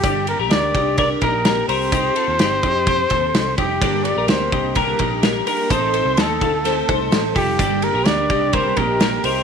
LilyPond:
<<
  \new Staff \with { instrumentName = "Trumpet" } { \time 4/4 \key g \minor \tempo 4 = 127 g'8 bes'8 d''4 d''8 bes'4 c''8~ | c''2.~ c''8 g'8~ | g'8 d''8 c''4 bes'4 r8 bes'8 | c''4 a'2 r8 g'8~ |
g'8 bes'8 d''4 c''8 bes'4 c''8 | }
  \new Staff \with { instrumentName = "Clean electric guitar" } { \time 4/4 \key g \minor <d' g'>8. <g' bes'>8. <ees' g'>8 <g' bes'>8 <ees' g'>8 <g' bes'>8 <g' bes'>8 | <ees' g'>8 <f' a'>8 <ees' g'>8 <ees' g'>8 <g' c''>8 <a' c''>4 <ees' g'>8 | <d' g'>8. <g' bes'>8. <ees' g'>8 <g' bes'>8 <ees' g'>8 <g' bes'>8 <g' bes'>8 | <ees' a'>8 <a' c''>8 <ees' a'>8 <f' a'>8 <a' c''>8 <a' c''>4 <f' a'>8 |
<d' g'>8. <g' bes'>8. <ees' g'>8 <g' bes'>8 <ees' g'>8 <g' bes'>8 <g' bes'>8 | }
  \new Staff \with { instrumentName = "Twelve-string acoustic guitar" } { \time 4/4 \key g \minor r1 | r1 | <g, d g bes d' bes'>8 <g bes d' bes'>8 <g bes d' bes'>8 <g bes d' bes'>8 <g, d g bes d' bes'>8 <g bes d' bes'>8 <g bes d' bes'>8 <g bes d' bes'>8 | <a c' ees' a'>8 <c' ees' a'>8 <a c' ees' a'>8 <c' ees' a'>8 <a c' ees' a'>8 <c' ees' a'>8 <a c' ees' a'>8 <c' ees' a'>8 |
<g, d g bes d' g'>8 <g bes d' g'>8 <g bes d' g'>8 <g bes d' g'>8 <g, d g bes d' g'>8 <g bes d' g'>8 <g bes d' g'>8 <c' ees' g'>8 | }
  \new Staff \with { instrumentName = "Vibraphone" } { \time 4/4 \key g \minor g8 bes8 d'4 d'8 bes4 c'8~ | c'2.~ c'8 g8~ | g8 d'8 c'4 bes4 r8 bes8 | c'4 a2 r8 g8~ |
g8 bes8 d'4 c'8 bes4 c'8 | }
  \new Staff \with { instrumentName = "Picked electric bass" } { \clef bass \time 4/4 \key g \minor g,,8. bes,,16 d,8 c,4 bes,,4 c,8~ | c,8 r16 ees,16 g,,8 f,4 ees,8 c,8 f,,8 | g,,8. bes,,16 d,8 c,4 bes,,4 r8 | a,,8. c,16 ees,8 d,4 c,8 a,,8 f,,8 |
g,,8. bes,,16 d,8 c,4 bes,,4 c,8 | }
  \new DrumStaff \with { instrumentName = "Drums" } \drummode { \time 4/4 <hhp bd cymr>8 cymr8 <cymr sn>8 <bd cymr>8 <bd cymr>8 <bd cymr>8 <cymr sn>8 <hho cymr>8 | <hhp bd cymr>8 cymr8 <cymr sn>8 <bd cymr>8 <bd cymr sn>8 <bd cymr>8 <cymr sn>8 <bd cymr>8 | <bd cymr>8 cymr8 <cymr sn>8 <bd cymr>8 <bd cymr>8 <bd cymr>8 <cymr sn>8 <hho cymr>8 | <hhp bd cymr>8 cymr8 <cymr sn>8 <bd cymr>8 <cymr sn>8 <bd cymr>8 <cymr sn>8 <hho bd cymr>8 |
<hhp bd cymr>8 cymr8 <cymr sn>8 <bd cymr>8 <bd cymr>8 <bd cymr>8 <cymr sn>8 <hho cymr>8 | }
>>